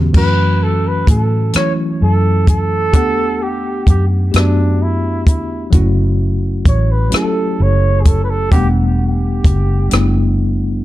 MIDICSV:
0, 0, Header, 1, 6, 480
1, 0, Start_track
1, 0, Tempo, 930233
1, 77, Time_signature, 6, 3, 24, 8
1, 5597, End_track
2, 0, Start_track
2, 0, Title_t, "Flugelhorn"
2, 0, Program_c, 0, 56
2, 86, Note_on_c, 0, 71, 109
2, 327, Note_on_c, 0, 69, 90
2, 335, Note_off_c, 0, 71, 0
2, 452, Note_on_c, 0, 71, 87
2, 460, Note_off_c, 0, 69, 0
2, 564, Note_off_c, 0, 71, 0
2, 568, Note_on_c, 0, 69, 77
2, 786, Note_off_c, 0, 69, 0
2, 810, Note_on_c, 0, 73, 92
2, 893, Note_off_c, 0, 73, 0
2, 1046, Note_on_c, 0, 69, 88
2, 1265, Note_off_c, 0, 69, 0
2, 1286, Note_on_c, 0, 69, 114
2, 1767, Note_on_c, 0, 67, 89
2, 1774, Note_off_c, 0, 69, 0
2, 2002, Note_off_c, 0, 67, 0
2, 2011, Note_on_c, 0, 67, 79
2, 2093, Note_off_c, 0, 67, 0
2, 2252, Note_on_c, 0, 62, 82
2, 2489, Note_on_c, 0, 64, 82
2, 2497, Note_off_c, 0, 62, 0
2, 2717, Note_off_c, 0, 64, 0
2, 2720, Note_on_c, 0, 64, 74
2, 2942, Note_off_c, 0, 64, 0
2, 3448, Note_on_c, 0, 73, 86
2, 3568, Note_on_c, 0, 71, 90
2, 3576, Note_off_c, 0, 73, 0
2, 3682, Note_off_c, 0, 71, 0
2, 3694, Note_on_c, 0, 69, 86
2, 3933, Note_on_c, 0, 73, 105
2, 3941, Note_off_c, 0, 69, 0
2, 4132, Note_on_c, 0, 68, 65
2, 4140, Note_off_c, 0, 73, 0
2, 4161, Note_on_c, 0, 69, 85
2, 4169, Note_off_c, 0, 68, 0
2, 4247, Note_off_c, 0, 69, 0
2, 4250, Note_on_c, 0, 71, 69
2, 4282, Note_on_c, 0, 69, 88
2, 4290, Note_off_c, 0, 71, 0
2, 4391, Note_off_c, 0, 69, 0
2, 4394, Note_on_c, 0, 67, 98
2, 4477, Note_off_c, 0, 67, 0
2, 4636, Note_on_c, 0, 67, 84
2, 5336, Note_off_c, 0, 67, 0
2, 5597, End_track
3, 0, Start_track
3, 0, Title_t, "Tine electric piano"
3, 0, Program_c, 1, 4
3, 0, Control_c, 1, 64, 127
3, 0, Note_on_c, 1, 52, 79
3, 0, Note_on_c, 1, 59, 75
3, 0, Note_on_c, 1, 61, 75
3, 0, Note_on_c, 1, 66, 96
3, 0, Note_on_c, 1, 67, 80
3, 66, Note_off_c, 1, 52, 0
3, 66, Note_on_c, 1, 52, 73
3, 73, Note_on_c, 1, 54, 65
3, 77, Note_on_c, 1, 57, 65
3, 80, Note_off_c, 1, 61, 0
3, 80, Note_on_c, 1, 61, 70
3, 84, Control_c, 1, 64, 0
3, 86, Note_off_c, 1, 59, 0
3, 86, Note_off_c, 1, 66, 0
3, 88, Note_off_c, 1, 67, 0
3, 88, Note_on_c, 1, 66, 83
3, 173, Control_c, 1, 64, 127
3, 735, Note_off_c, 1, 52, 0
3, 738, Note_off_c, 1, 54, 0
3, 740, Note_off_c, 1, 57, 0
3, 742, Note_off_c, 1, 61, 0
3, 745, Note_off_c, 1, 66, 0
3, 790, Note_on_c, 1, 52, 62
3, 795, Note_on_c, 1, 54, 57
3, 801, Note_on_c, 1, 57, 59
3, 806, Note_on_c, 1, 61, 56
3, 812, Note_on_c, 1, 64, 68
3, 1457, Note_off_c, 1, 52, 0
3, 1459, Note_off_c, 1, 54, 0
3, 1462, Note_off_c, 1, 57, 0
3, 1465, Note_off_c, 1, 61, 0
3, 1467, Note_off_c, 1, 64, 0
3, 1508, Note_on_c, 1, 67, 72
3, 1515, Note_on_c, 1, 57, 65
3, 1522, Note_on_c, 1, 59, 61
3, 1524, Control_c, 1, 64, 0
3, 1525, Note_on_c, 1, 62, 62
3, 1532, Note_on_c, 1, 78, 78
3, 1623, Control_c, 1, 64, 127
3, 2176, Note_off_c, 1, 67, 0
3, 2179, Note_off_c, 1, 57, 0
3, 2182, Note_off_c, 1, 59, 0
3, 2184, Note_off_c, 1, 62, 0
3, 2188, Note_off_c, 1, 78, 0
3, 2227, Note_on_c, 1, 67, 60
3, 2233, Note_on_c, 1, 57, 62
3, 2238, Note_on_c, 1, 59, 58
3, 2241, Note_on_c, 1, 62, 57
3, 2249, Note_on_c, 1, 66, 68
3, 2895, Note_off_c, 1, 67, 0
3, 2898, Note_off_c, 1, 57, 0
3, 2900, Note_off_c, 1, 59, 0
3, 2902, Note_off_c, 1, 62, 0
3, 2906, Note_off_c, 1, 66, 0
3, 2943, Note_on_c, 1, 54, 77
3, 2950, Note_on_c, 1, 57, 68
3, 2957, Note_on_c, 1, 61, 67
3, 2960, Note_on_c, 1, 64, 69
3, 2963, Control_c, 1, 64, 0
3, 2965, Note_on_c, 1, 66, 77
3, 3066, Control_c, 1, 64, 127
3, 3613, Note_off_c, 1, 54, 0
3, 3617, Note_off_c, 1, 57, 0
3, 3620, Note_off_c, 1, 61, 0
3, 3622, Note_off_c, 1, 64, 0
3, 3624, Note_off_c, 1, 66, 0
3, 3666, Note_on_c, 1, 54, 69
3, 3673, Note_on_c, 1, 57, 57
3, 3675, Note_on_c, 1, 61, 62
3, 3682, Note_on_c, 1, 64, 62
3, 3687, Note_on_c, 1, 67, 58
3, 3716, Note_off_c, 1, 67, 0
3, 3722, Note_on_c, 1, 69, 72
3, 4335, Note_off_c, 1, 54, 0
3, 4338, Note_off_c, 1, 57, 0
3, 4339, Note_off_c, 1, 61, 0
3, 4343, Note_off_c, 1, 64, 0
3, 4363, Note_off_c, 1, 69, 0
3, 4389, Note_on_c, 1, 54, 57
3, 4396, Note_on_c, 1, 57, 69
3, 4402, Note_on_c, 1, 59, 69
3, 4404, Control_c, 1, 64, 0
3, 4405, Note_on_c, 1, 62, 68
3, 4412, Note_on_c, 1, 78, 86
3, 4424, Note_on_c, 1, 55, 76
3, 4427, Note_off_c, 1, 54, 0
3, 4507, Control_c, 1, 64, 127
3, 5060, Note_off_c, 1, 57, 0
3, 5063, Note_off_c, 1, 59, 0
3, 5064, Note_off_c, 1, 62, 0
3, 5067, Note_off_c, 1, 78, 0
3, 5074, Note_off_c, 1, 55, 0
3, 5106, Note_on_c, 1, 55, 68
3, 5111, Note_on_c, 1, 57, 62
3, 5118, Note_on_c, 1, 59, 60
3, 5124, Note_on_c, 1, 62, 59
3, 5130, Note_on_c, 1, 64, 69
3, 5597, Note_off_c, 1, 55, 0
3, 5597, Note_off_c, 1, 57, 0
3, 5597, Note_off_c, 1, 59, 0
3, 5597, Note_off_c, 1, 62, 0
3, 5597, Note_off_c, 1, 64, 0
3, 5597, End_track
4, 0, Start_track
4, 0, Title_t, "Fingered electric bass"
4, 0, Program_c, 2, 33
4, 0, Note_on_c, 2, 40, 81
4, 60, Note_off_c, 2, 40, 0
4, 77, Note_on_c, 2, 42, 98
4, 536, Note_off_c, 2, 42, 0
4, 559, Note_on_c, 2, 45, 80
4, 777, Note_off_c, 2, 45, 0
4, 1043, Note_on_c, 2, 42, 92
4, 1517, Note_off_c, 2, 42, 0
4, 1517, Note_on_c, 2, 40, 95
4, 1976, Note_off_c, 2, 40, 0
4, 2000, Note_on_c, 2, 42, 78
4, 2218, Note_off_c, 2, 42, 0
4, 2242, Note_on_c, 2, 42, 95
4, 2721, Note_off_c, 2, 42, 0
4, 2721, Note_on_c, 2, 40, 73
4, 2938, Note_off_c, 2, 40, 0
4, 2959, Note_on_c, 2, 30, 96
4, 3417, Note_off_c, 2, 30, 0
4, 3437, Note_on_c, 2, 33, 77
4, 3656, Note_off_c, 2, 33, 0
4, 3921, Note_on_c, 2, 30, 92
4, 4379, Note_off_c, 2, 30, 0
4, 4398, Note_on_c, 2, 28, 94
4, 4857, Note_off_c, 2, 28, 0
4, 4876, Note_on_c, 2, 30, 91
4, 5096, Note_off_c, 2, 30, 0
4, 5122, Note_on_c, 2, 30, 84
4, 5597, Note_off_c, 2, 30, 0
4, 5597, End_track
5, 0, Start_track
5, 0, Title_t, "Muted fingered electric bass strokes"
5, 800, Note_on_c, 9, 29, 39
5, 851, Note_off_c, 9, 29, 0
5, 3681, Note_on_c, 9, 29, 47
5, 3733, Note_off_c, 9, 29, 0
5, 5597, End_track
6, 0, Start_track
6, 0, Title_t, "Drums"
6, 73, Note_on_c, 9, 49, 84
6, 74, Note_on_c, 9, 36, 96
6, 125, Note_off_c, 9, 49, 0
6, 126, Note_off_c, 9, 36, 0
6, 554, Note_on_c, 9, 36, 82
6, 557, Note_on_c, 9, 42, 58
6, 605, Note_off_c, 9, 36, 0
6, 608, Note_off_c, 9, 42, 0
6, 792, Note_on_c, 9, 42, 57
6, 805, Note_on_c, 9, 37, 86
6, 843, Note_off_c, 9, 42, 0
6, 856, Note_off_c, 9, 37, 0
6, 1277, Note_on_c, 9, 36, 90
6, 1278, Note_on_c, 9, 42, 62
6, 1328, Note_off_c, 9, 36, 0
6, 1330, Note_off_c, 9, 42, 0
6, 1515, Note_on_c, 9, 36, 108
6, 1515, Note_on_c, 9, 42, 67
6, 1566, Note_off_c, 9, 36, 0
6, 1567, Note_off_c, 9, 42, 0
6, 1996, Note_on_c, 9, 36, 81
6, 2000, Note_on_c, 9, 42, 53
6, 2047, Note_off_c, 9, 36, 0
6, 2051, Note_off_c, 9, 42, 0
6, 2238, Note_on_c, 9, 42, 56
6, 2251, Note_on_c, 9, 37, 92
6, 2289, Note_off_c, 9, 42, 0
6, 2302, Note_off_c, 9, 37, 0
6, 2718, Note_on_c, 9, 36, 92
6, 2722, Note_on_c, 9, 42, 58
6, 2769, Note_off_c, 9, 36, 0
6, 2773, Note_off_c, 9, 42, 0
6, 2954, Note_on_c, 9, 42, 62
6, 2955, Note_on_c, 9, 36, 115
6, 3005, Note_off_c, 9, 42, 0
6, 3006, Note_off_c, 9, 36, 0
6, 3434, Note_on_c, 9, 36, 88
6, 3435, Note_on_c, 9, 42, 60
6, 3485, Note_off_c, 9, 36, 0
6, 3487, Note_off_c, 9, 42, 0
6, 3672, Note_on_c, 9, 42, 56
6, 3686, Note_on_c, 9, 37, 82
6, 3724, Note_off_c, 9, 42, 0
6, 3737, Note_off_c, 9, 37, 0
6, 4156, Note_on_c, 9, 36, 91
6, 4156, Note_on_c, 9, 42, 60
6, 4207, Note_off_c, 9, 42, 0
6, 4208, Note_off_c, 9, 36, 0
6, 4395, Note_on_c, 9, 36, 111
6, 4396, Note_on_c, 9, 42, 64
6, 4446, Note_off_c, 9, 36, 0
6, 4448, Note_off_c, 9, 42, 0
6, 4874, Note_on_c, 9, 36, 90
6, 4875, Note_on_c, 9, 42, 58
6, 4925, Note_off_c, 9, 36, 0
6, 4927, Note_off_c, 9, 42, 0
6, 5113, Note_on_c, 9, 42, 59
6, 5127, Note_on_c, 9, 37, 93
6, 5165, Note_off_c, 9, 42, 0
6, 5178, Note_off_c, 9, 37, 0
6, 5597, End_track
0, 0, End_of_file